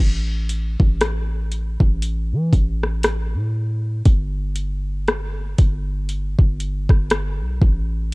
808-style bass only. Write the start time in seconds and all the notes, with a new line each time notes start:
0.00 A1
0.80 A1
1.80 A1
2.32 E3
2.53 A1
3.34 A2
4.06 G1
5.59 G1
6.39 G1
6.90 G1
7.41 B1
7.62 A1